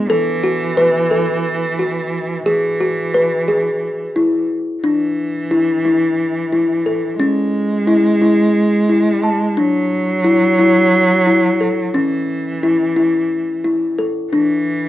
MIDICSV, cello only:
0, 0, Header, 1, 2, 480
1, 0, Start_track
1, 0, Tempo, 677201
1, 70, Time_signature, 7, 3, 24, 8
1, 10552, End_track
2, 0, Start_track
2, 0, Title_t, "Cello"
2, 0, Program_c, 0, 42
2, 0, Note_on_c, 0, 56, 109
2, 69, Note_on_c, 0, 52, 102
2, 80, Note_off_c, 0, 56, 0
2, 1743, Note_off_c, 0, 52, 0
2, 1747, Note_on_c, 0, 52, 87
2, 3156, Note_off_c, 0, 52, 0
2, 3429, Note_on_c, 0, 52, 79
2, 5078, Note_off_c, 0, 52, 0
2, 5100, Note_on_c, 0, 56, 91
2, 6789, Note_on_c, 0, 54, 103
2, 6800, Note_off_c, 0, 56, 0
2, 8465, Note_on_c, 0, 52, 75
2, 8475, Note_off_c, 0, 54, 0
2, 9910, Note_off_c, 0, 52, 0
2, 10151, Note_on_c, 0, 52, 98
2, 10552, Note_off_c, 0, 52, 0
2, 10552, End_track
0, 0, End_of_file